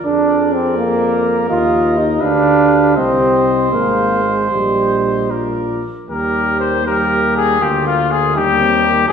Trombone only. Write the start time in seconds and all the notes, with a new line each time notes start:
0.06 D4
0.53 C4
0.78 A#3
1.50 F4
1.98 D#4
2.23 D4
2.97 C4
3.73 A#3
4.25 G#3
4.51 G3
6.10 G3
6.87 A#3
7.62 A#3
8.36 G3
9.09 F3